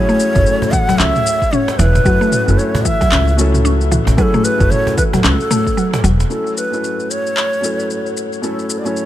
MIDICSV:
0, 0, Header, 1, 7, 480
1, 0, Start_track
1, 0, Key_signature, 3, "minor"
1, 0, Tempo, 530973
1, 1860, Time_signature, 4, 2, 24, 8
1, 8185, End_track
2, 0, Start_track
2, 0, Title_t, "Ney"
2, 0, Program_c, 0, 77
2, 0, Note_on_c, 0, 73, 108
2, 646, Note_on_c, 0, 78, 116
2, 660, Note_off_c, 0, 73, 0
2, 887, Note_on_c, 0, 76, 113
2, 901, Note_off_c, 0, 78, 0
2, 1370, Note_on_c, 0, 74, 88
2, 1384, Note_off_c, 0, 76, 0
2, 1407, Note_on_c, 0, 73, 96
2, 1416, Note_off_c, 0, 74, 0
2, 1608, Note_on_c, 0, 71, 109
2, 1621, Note_off_c, 0, 73, 0
2, 2336, Note_on_c, 0, 73, 91
2, 2349, Note_off_c, 0, 71, 0
2, 2575, Note_on_c, 0, 76, 101
2, 2589, Note_off_c, 0, 73, 0
2, 3057, Note_off_c, 0, 76, 0
2, 3777, Note_on_c, 0, 71, 98
2, 3817, Note_on_c, 0, 69, 106
2, 3826, Note_off_c, 0, 71, 0
2, 4015, Note_on_c, 0, 71, 100
2, 4029, Note_off_c, 0, 69, 0
2, 4255, Note_on_c, 0, 73, 116
2, 4269, Note_off_c, 0, 71, 0
2, 4490, Note_off_c, 0, 73, 0
2, 4495, Note_on_c, 0, 71, 102
2, 4550, Note_off_c, 0, 71, 0
2, 4732, Note_on_c, 0, 69, 96
2, 5420, Note_off_c, 0, 69, 0
2, 5705, Note_on_c, 0, 69, 80
2, 5926, Note_off_c, 0, 69, 0
2, 5942, Note_on_c, 0, 71, 88
2, 6421, Note_on_c, 0, 73, 95
2, 6435, Note_off_c, 0, 71, 0
2, 7380, Note_off_c, 0, 73, 0
2, 7624, Note_on_c, 0, 69, 78
2, 7938, Note_on_c, 0, 74, 59
2, 7952, Note_off_c, 0, 69, 0
2, 8006, Note_on_c, 0, 73, 86
2, 8020, Note_off_c, 0, 74, 0
2, 8185, Note_off_c, 0, 73, 0
2, 8185, End_track
3, 0, Start_track
3, 0, Title_t, "Felt piano"
3, 0, Program_c, 1, 0
3, 0, Control_c, 1, 64, 127
3, 0, Note_on_c, 1, 54, 92
3, 0, Note_on_c, 1, 57, 86
3, 0, Note_on_c, 1, 61, 86
3, 0, Note_on_c, 1, 64, 83
3, 0, Note_on_c, 1, 68, 101
3, 0, Note_on_c, 1, 69, 91
3, 287, Note_off_c, 1, 54, 0
3, 288, Note_off_c, 1, 57, 0
3, 291, Note_off_c, 1, 61, 0
3, 294, Note_off_c, 1, 64, 0
3, 296, Note_off_c, 1, 68, 0
3, 310, Note_on_c, 1, 54, 96
3, 320, Note_on_c, 1, 57, 82
3, 330, Note_on_c, 1, 61, 84
3, 337, Note_on_c, 1, 64, 81
3, 348, Note_off_c, 1, 69, 0
3, 348, Note_on_c, 1, 69, 100
3, 1830, Note_off_c, 1, 54, 0
3, 1835, Note_off_c, 1, 57, 0
3, 1840, Note_off_c, 1, 61, 0
3, 1844, Note_off_c, 1, 64, 0
3, 1848, Note_on_c, 1, 54, 76
3, 1849, Note_off_c, 1, 69, 0
3, 1851, Note_on_c, 1, 57, 71
3, 1857, Note_on_c, 1, 61, 74
3, 1864, Note_on_c, 1, 64, 68
3, 1868, Note_on_c, 1, 69, 84
3, 2202, Note_off_c, 1, 54, 0
3, 2204, Note_off_c, 1, 57, 0
3, 2207, Note_off_c, 1, 61, 0
3, 2210, Note_off_c, 1, 64, 0
3, 2213, Note_off_c, 1, 69, 0
3, 2228, Note_on_c, 1, 54, 80
3, 2236, Note_on_c, 1, 57, 72
3, 2247, Note_on_c, 1, 61, 76
3, 2254, Note_on_c, 1, 64, 70
3, 2263, Note_on_c, 1, 69, 91
3, 3029, Note_off_c, 1, 54, 0
3, 3033, Note_off_c, 1, 57, 0
3, 3039, Note_off_c, 1, 61, 0
3, 3042, Note_off_c, 1, 64, 0
3, 3046, Note_on_c, 1, 54, 89
3, 3047, Note_off_c, 1, 69, 0
3, 3053, Note_on_c, 1, 57, 84
3, 3063, Note_on_c, 1, 61, 83
3, 3072, Note_on_c, 1, 64, 81
3, 3082, Note_on_c, 1, 69, 98
3, 3750, Note_off_c, 1, 54, 0
3, 3753, Note_off_c, 1, 57, 0
3, 3758, Note_off_c, 1, 61, 0
3, 3763, Note_off_c, 1, 64, 0
3, 3768, Note_off_c, 1, 69, 0
3, 3769, Note_on_c, 1, 54, 87
3, 3772, Note_on_c, 1, 57, 83
3, 3778, Note_on_c, 1, 61, 82
3, 3780, Note_on_c, 1, 64, 85
3, 3784, Note_on_c, 1, 68, 102
3, 4123, Note_off_c, 1, 54, 0
3, 4125, Note_off_c, 1, 57, 0
3, 4127, Note_off_c, 1, 61, 0
3, 4129, Note_off_c, 1, 64, 0
3, 4131, Note_off_c, 1, 68, 0
3, 4139, Note_on_c, 1, 54, 88
3, 4149, Note_on_c, 1, 57, 79
3, 4157, Note_on_c, 1, 61, 86
3, 4164, Note_on_c, 1, 64, 81
3, 4175, Note_on_c, 1, 69, 102
3, 5665, Note_off_c, 1, 54, 0
3, 5670, Note_off_c, 1, 57, 0
3, 5674, Note_off_c, 1, 61, 0
3, 5677, Note_off_c, 1, 64, 0
3, 5683, Note_off_c, 1, 69, 0
3, 5686, Note_on_c, 1, 54, 59
3, 5692, Note_on_c, 1, 57, 58
3, 5696, Note_on_c, 1, 61, 59
3, 5700, Note_on_c, 1, 64, 55
3, 5703, Note_on_c, 1, 69, 71
3, 5710, Control_c, 1, 64, 0
3, 5868, Control_c, 1, 64, 127
3, 6042, Note_off_c, 1, 54, 0
3, 6044, Note_off_c, 1, 57, 0
3, 6047, Note_off_c, 1, 61, 0
3, 6048, Note_off_c, 1, 64, 0
3, 6050, Note_off_c, 1, 69, 0
3, 6061, Note_on_c, 1, 54, 64
3, 6070, Note_on_c, 1, 57, 57
3, 6080, Note_on_c, 1, 61, 60
3, 6087, Note_on_c, 1, 64, 63
3, 6097, Note_on_c, 1, 69, 72
3, 6864, Note_off_c, 1, 54, 0
3, 6870, Note_off_c, 1, 57, 0
3, 6875, Note_off_c, 1, 61, 0
3, 6877, Note_on_c, 1, 54, 75
3, 6879, Note_off_c, 1, 64, 0
3, 6884, Note_off_c, 1, 69, 0
3, 6887, Note_on_c, 1, 57, 72
3, 6894, Note_on_c, 1, 61, 66
3, 6904, Note_on_c, 1, 64, 64
3, 6913, Note_on_c, 1, 69, 85
3, 7585, Note_off_c, 1, 54, 0
3, 7590, Note_off_c, 1, 57, 0
3, 7594, Note_off_c, 1, 61, 0
3, 7599, Note_off_c, 1, 64, 0
3, 7603, Note_off_c, 1, 69, 0
3, 7610, Note_on_c, 1, 54, 79
3, 7613, Note_on_c, 1, 57, 67
3, 7619, Note_on_c, 1, 61, 67
3, 7623, Note_on_c, 1, 64, 67
3, 7628, Note_on_c, 1, 69, 84
3, 7964, Note_off_c, 1, 54, 0
3, 7965, Note_off_c, 1, 57, 0
3, 7968, Note_off_c, 1, 61, 0
3, 7970, Note_off_c, 1, 64, 0
3, 7972, Note_off_c, 1, 69, 0
3, 7986, Note_on_c, 1, 54, 81
3, 7996, Note_on_c, 1, 57, 71
3, 8006, Note_on_c, 1, 61, 70
3, 8013, Note_on_c, 1, 64, 68
3, 8022, Note_on_c, 1, 69, 83
3, 8185, Note_off_c, 1, 54, 0
3, 8185, Note_off_c, 1, 57, 0
3, 8185, Note_off_c, 1, 61, 0
3, 8185, Note_off_c, 1, 64, 0
3, 8185, Note_off_c, 1, 69, 0
3, 8185, End_track
4, 0, Start_track
4, 0, Title_t, "Synth pluck"
4, 0, Program_c, 2, 84
4, 80, Note_on_c, 2, 57, 76
4, 547, Note_off_c, 2, 57, 0
4, 659, Note_on_c, 2, 52, 76
4, 795, Note_off_c, 2, 52, 0
4, 802, Note_on_c, 2, 54, 79
4, 895, Note_off_c, 2, 54, 0
4, 901, Note_on_c, 2, 61, 75
4, 1036, Note_off_c, 2, 61, 0
4, 1380, Note_on_c, 2, 61, 83
4, 1515, Note_off_c, 2, 61, 0
4, 1620, Note_on_c, 2, 52, 84
4, 1756, Note_off_c, 2, 52, 0
4, 1860, Note_on_c, 2, 54, 104
4, 1996, Note_off_c, 2, 54, 0
4, 1999, Note_on_c, 2, 57, 77
4, 2466, Note_off_c, 2, 57, 0
4, 2578, Note_on_c, 2, 52, 81
4, 2715, Note_off_c, 2, 52, 0
4, 2720, Note_on_c, 2, 54, 76
4, 2814, Note_off_c, 2, 54, 0
4, 2821, Note_on_c, 2, 61, 74
4, 2956, Note_off_c, 2, 61, 0
4, 3298, Note_on_c, 2, 61, 80
4, 3435, Note_off_c, 2, 61, 0
4, 3539, Note_on_c, 2, 52, 79
4, 3675, Note_off_c, 2, 52, 0
4, 3781, Note_on_c, 2, 54, 105
4, 3916, Note_off_c, 2, 54, 0
4, 3924, Note_on_c, 2, 57, 79
4, 4389, Note_off_c, 2, 57, 0
4, 4498, Note_on_c, 2, 52, 77
4, 4635, Note_off_c, 2, 52, 0
4, 4641, Note_on_c, 2, 54, 77
4, 4734, Note_off_c, 2, 54, 0
4, 4736, Note_on_c, 2, 61, 81
4, 4874, Note_off_c, 2, 61, 0
4, 4977, Note_on_c, 2, 57, 74
4, 5114, Note_off_c, 2, 57, 0
4, 5219, Note_on_c, 2, 54, 81
4, 5355, Note_off_c, 2, 54, 0
4, 5458, Note_on_c, 2, 54, 81
4, 5540, Note_off_c, 2, 54, 0
4, 8185, End_track
5, 0, Start_track
5, 0, Title_t, "Upright bass"
5, 0, Program_c, 3, 32
5, 322, Note_on_c, 3, 30, 89
5, 382, Note_off_c, 3, 30, 0
5, 900, Note_on_c, 3, 37, 90
5, 988, Note_off_c, 3, 37, 0
5, 1618, Note_on_c, 3, 28, 100
5, 1784, Note_off_c, 3, 28, 0
5, 1859, Note_on_c, 3, 30, 96
5, 1947, Note_off_c, 3, 30, 0
5, 2243, Note_on_c, 3, 30, 91
5, 2303, Note_off_c, 3, 30, 0
5, 2820, Note_on_c, 3, 37, 102
5, 3594, Note_off_c, 3, 37, 0
5, 3682, Note_on_c, 3, 33, 83
5, 3742, Note_off_c, 3, 33, 0
5, 4161, Note_on_c, 3, 30, 90
5, 4222, Note_off_c, 3, 30, 0
5, 4740, Note_on_c, 3, 37, 97
5, 4828, Note_off_c, 3, 37, 0
5, 5459, Note_on_c, 3, 28, 104
5, 5625, Note_off_c, 3, 28, 0
5, 8185, End_track
6, 0, Start_track
6, 0, Title_t, "Cajon"
6, 560, Note_on_c, 9, 36, 81
6, 650, Note_off_c, 9, 36, 0
6, 804, Note_on_c, 9, 38, 37
6, 806, Note_on_c, 9, 36, 84
6, 895, Note_off_c, 9, 38, 0
6, 897, Note_off_c, 9, 36, 0
6, 1520, Note_on_c, 9, 38, 85
6, 1610, Note_off_c, 9, 38, 0
6, 1622, Note_on_c, 9, 38, 85
6, 1712, Note_off_c, 9, 38, 0
6, 1766, Note_on_c, 9, 38, 60
6, 1857, Note_off_c, 9, 38, 0
6, 2483, Note_on_c, 9, 36, 89
6, 2573, Note_off_c, 9, 36, 0
6, 2728, Note_on_c, 9, 36, 82
6, 2818, Note_off_c, 9, 36, 0
6, 3679, Note_on_c, 9, 36, 87
6, 3684, Note_on_c, 9, 38, 68
6, 3769, Note_off_c, 9, 36, 0
6, 3774, Note_off_c, 9, 38, 0
6, 4401, Note_on_c, 9, 36, 81
6, 4492, Note_off_c, 9, 36, 0
6, 4641, Note_on_c, 9, 36, 95
6, 4642, Note_on_c, 9, 38, 38
6, 4731, Note_off_c, 9, 36, 0
6, 4732, Note_off_c, 9, 38, 0
6, 4979, Note_on_c, 9, 38, 59
6, 5069, Note_off_c, 9, 38, 0
6, 5366, Note_on_c, 9, 38, 97
6, 5456, Note_off_c, 9, 38, 0
6, 5466, Note_on_c, 9, 38, 76
6, 5557, Note_off_c, 9, 38, 0
6, 5607, Note_on_c, 9, 38, 75
6, 5698, Note_off_c, 9, 38, 0
6, 8185, End_track
7, 0, Start_track
7, 0, Title_t, "Drums"
7, 82, Note_on_c, 9, 82, 21
7, 173, Note_off_c, 9, 82, 0
7, 178, Note_on_c, 9, 82, 70
7, 268, Note_off_c, 9, 82, 0
7, 318, Note_on_c, 9, 45, 81
7, 320, Note_on_c, 9, 82, 32
7, 322, Note_on_c, 9, 36, 103
7, 409, Note_off_c, 9, 45, 0
7, 410, Note_off_c, 9, 82, 0
7, 412, Note_off_c, 9, 36, 0
7, 418, Note_on_c, 9, 82, 43
7, 508, Note_off_c, 9, 82, 0
7, 563, Note_on_c, 9, 82, 21
7, 653, Note_off_c, 9, 82, 0
7, 658, Note_on_c, 9, 45, 83
7, 659, Note_on_c, 9, 36, 107
7, 660, Note_on_c, 9, 82, 81
7, 749, Note_off_c, 9, 45, 0
7, 750, Note_off_c, 9, 36, 0
7, 750, Note_off_c, 9, 82, 0
7, 805, Note_on_c, 9, 82, 34
7, 895, Note_off_c, 9, 82, 0
7, 900, Note_on_c, 9, 39, 75
7, 902, Note_on_c, 9, 82, 42
7, 991, Note_off_c, 9, 39, 0
7, 992, Note_off_c, 9, 82, 0
7, 1045, Note_on_c, 9, 45, 74
7, 1046, Note_on_c, 9, 82, 21
7, 1135, Note_off_c, 9, 45, 0
7, 1137, Note_off_c, 9, 82, 0
7, 1143, Note_on_c, 9, 82, 78
7, 1233, Note_off_c, 9, 82, 0
7, 1282, Note_on_c, 9, 36, 62
7, 1287, Note_on_c, 9, 82, 29
7, 1373, Note_off_c, 9, 36, 0
7, 1377, Note_off_c, 9, 82, 0
7, 1381, Note_on_c, 9, 45, 73
7, 1382, Note_on_c, 9, 82, 44
7, 1471, Note_off_c, 9, 45, 0
7, 1473, Note_off_c, 9, 82, 0
7, 1526, Note_on_c, 9, 82, 21
7, 1616, Note_off_c, 9, 82, 0
7, 1620, Note_on_c, 9, 82, 80
7, 1710, Note_off_c, 9, 82, 0
7, 1763, Note_on_c, 9, 45, 79
7, 1764, Note_on_c, 9, 82, 31
7, 1853, Note_off_c, 9, 45, 0
7, 1855, Note_off_c, 9, 82, 0
7, 1859, Note_on_c, 9, 36, 112
7, 1860, Note_on_c, 9, 82, 45
7, 1949, Note_off_c, 9, 36, 0
7, 1950, Note_off_c, 9, 82, 0
7, 2004, Note_on_c, 9, 82, 23
7, 2095, Note_off_c, 9, 82, 0
7, 2099, Note_on_c, 9, 45, 79
7, 2100, Note_on_c, 9, 82, 68
7, 2189, Note_off_c, 9, 45, 0
7, 2191, Note_off_c, 9, 82, 0
7, 2244, Note_on_c, 9, 82, 30
7, 2334, Note_off_c, 9, 82, 0
7, 2342, Note_on_c, 9, 82, 43
7, 2432, Note_off_c, 9, 82, 0
7, 2483, Note_on_c, 9, 45, 79
7, 2484, Note_on_c, 9, 82, 21
7, 2573, Note_off_c, 9, 45, 0
7, 2575, Note_off_c, 9, 82, 0
7, 2579, Note_on_c, 9, 36, 64
7, 2580, Note_on_c, 9, 82, 75
7, 2669, Note_off_c, 9, 36, 0
7, 2670, Note_off_c, 9, 82, 0
7, 2722, Note_on_c, 9, 36, 105
7, 2723, Note_on_c, 9, 82, 34
7, 2812, Note_off_c, 9, 36, 0
7, 2813, Note_off_c, 9, 82, 0
7, 2818, Note_on_c, 9, 39, 69
7, 2818, Note_on_c, 9, 45, 72
7, 2820, Note_on_c, 9, 82, 40
7, 2909, Note_off_c, 9, 39, 0
7, 2909, Note_off_c, 9, 45, 0
7, 2910, Note_off_c, 9, 82, 0
7, 2962, Note_on_c, 9, 82, 22
7, 3052, Note_off_c, 9, 82, 0
7, 3061, Note_on_c, 9, 82, 72
7, 3151, Note_off_c, 9, 82, 0
7, 3204, Note_on_c, 9, 45, 74
7, 3205, Note_on_c, 9, 82, 32
7, 3294, Note_off_c, 9, 45, 0
7, 3296, Note_off_c, 9, 82, 0
7, 3302, Note_on_c, 9, 82, 42
7, 3392, Note_off_c, 9, 82, 0
7, 3443, Note_on_c, 9, 82, 21
7, 3534, Note_off_c, 9, 82, 0
7, 3541, Note_on_c, 9, 45, 88
7, 3542, Note_on_c, 9, 82, 76
7, 3631, Note_off_c, 9, 45, 0
7, 3632, Note_off_c, 9, 82, 0
7, 3683, Note_on_c, 9, 82, 34
7, 3774, Note_off_c, 9, 82, 0
7, 3779, Note_on_c, 9, 36, 117
7, 3780, Note_on_c, 9, 82, 46
7, 3870, Note_off_c, 9, 36, 0
7, 3870, Note_off_c, 9, 82, 0
7, 3921, Note_on_c, 9, 45, 83
7, 3923, Note_on_c, 9, 82, 21
7, 4012, Note_off_c, 9, 45, 0
7, 4013, Note_off_c, 9, 82, 0
7, 4018, Note_on_c, 9, 82, 76
7, 4109, Note_off_c, 9, 82, 0
7, 4162, Note_on_c, 9, 36, 100
7, 4163, Note_on_c, 9, 82, 34
7, 4252, Note_off_c, 9, 36, 0
7, 4254, Note_off_c, 9, 82, 0
7, 4262, Note_on_c, 9, 45, 80
7, 4263, Note_on_c, 9, 82, 42
7, 4352, Note_off_c, 9, 45, 0
7, 4353, Note_off_c, 9, 82, 0
7, 4405, Note_on_c, 9, 82, 21
7, 4496, Note_off_c, 9, 82, 0
7, 4499, Note_on_c, 9, 36, 101
7, 4501, Note_on_c, 9, 82, 81
7, 4590, Note_off_c, 9, 36, 0
7, 4591, Note_off_c, 9, 82, 0
7, 4643, Note_on_c, 9, 45, 85
7, 4644, Note_on_c, 9, 82, 36
7, 4733, Note_off_c, 9, 45, 0
7, 4735, Note_off_c, 9, 82, 0
7, 4740, Note_on_c, 9, 39, 76
7, 4742, Note_on_c, 9, 82, 44
7, 4831, Note_off_c, 9, 39, 0
7, 4832, Note_off_c, 9, 82, 0
7, 4885, Note_on_c, 9, 82, 23
7, 4975, Note_off_c, 9, 82, 0
7, 4980, Note_on_c, 9, 45, 83
7, 4981, Note_on_c, 9, 82, 77
7, 5070, Note_off_c, 9, 45, 0
7, 5072, Note_off_c, 9, 82, 0
7, 5123, Note_on_c, 9, 36, 59
7, 5127, Note_on_c, 9, 82, 29
7, 5213, Note_off_c, 9, 36, 0
7, 5218, Note_off_c, 9, 82, 0
7, 5222, Note_on_c, 9, 82, 42
7, 5312, Note_off_c, 9, 82, 0
7, 5364, Note_on_c, 9, 45, 82
7, 5366, Note_on_c, 9, 82, 22
7, 5455, Note_off_c, 9, 45, 0
7, 5456, Note_off_c, 9, 82, 0
7, 5462, Note_on_c, 9, 82, 76
7, 5553, Note_off_c, 9, 82, 0
7, 5604, Note_on_c, 9, 82, 33
7, 5695, Note_off_c, 9, 82, 0
7, 5701, Note_on_c, 9, 82, 38
7, 5791, Note_off_c, 9, 82, 0
7, 5845, Note_on_c, 9, 82, 20
7, 5936, Note_off_c, 9, 82, 0
7, 5942, Note_on_c, 9, 82, 65
7, 6032, Note_off_c, 9, 82, 0
7, 6087, Note_on_c, 9, 82, 27
7, 6177, Note_off_c, 9, 82, 0
7, 6184, Note_on_c, 9, 82, 39
7, 6275, Note_off_c, 9, 82, 0
7, 6325, Note_on_c, 9, 82, 19
7, 6416, Note_off_c, 9, 82, 0
7, 6425, Note_on_c, 9, 82, 67
7, 6515, Note_off_c, 9, 82, 0
7, 6568, Note_on_c, 9, 82, 29
7, 6659, Note_off_c, 9, 82, 0
7, 6663, Note_on_c, 9, 39, 68
7, 6665, Note_on_c, 9, 82, 35
7, 6754, Note_off_c, 9, 39, 0
7, 6755, Note_off_c, 9, 82, 0
7, 6808, Note_on_c, 9, 82, 18
7, 6898, Note_off_c, 9, 82, 0
7, 6904, Note_on_c, 9, 82, 70
7, 6995, Note_off_c, 9, 82, 0
7, 7047, Note_on_c, 9, 82, 27
7, 7137, Note_off_c, 9, 82, 0
7, 7145, Note_on_c, 9, 82, 37
7, 7235, Note_off_c, 9, 82, 0
7, 7288, Note_on_c, 9, 82, 19
7, 7378, Note_off_c, 9, 82, 0
7, 7385, Note_on_c, 9, 82, 71
7, 7476, Note_off_c, 9, 82, 0
7, 7527, Note_on_c, 9, 82, 28
7, 7617, Note_off_c, 9, 82, 0
7, 7624, Note_on_c, 9, 82, 41
7, 7714, Note_off_c, 9, 82, 0
7, 7765, Note_on_c, 9, 82, 20
7, 7856, Note_off_c, 9, 82, 0
7, 7862, Note_on_c, 9, 82, 65
7, 7952, Note_off_c, 9, 82, 0
7, 8008, Note_on_c, 9, 82, 29
7, 8098, Note_off_c, 9, 82, 0
7, 8104, Note_on_c, 9, 82, 41
7, 8185, Note_off_c, 9, 82, 0
7, 8185, End_track
0, 0, End_of_file